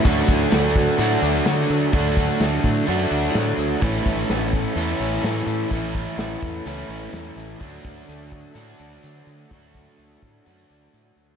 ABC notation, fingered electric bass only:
X:1
M:4/4
L:1/8
Q:1/4=127
K:Dlyd
V:1 name="Fingered electric bass" clef=bass
D,, D,, D,,2 A,, D,, D, D, | D,,2 D,, A,, F,, D,, A,, D,, | A,,, A,,, A,,,2 E,, A,,, A,, A,, | A,,,2 A,,, E,, C,, A,,, E,, A,,, |
D,, D,, D,,2 A,, D,, D, D, | D,,2 D,, A,, F,, D,, A,, D,, |]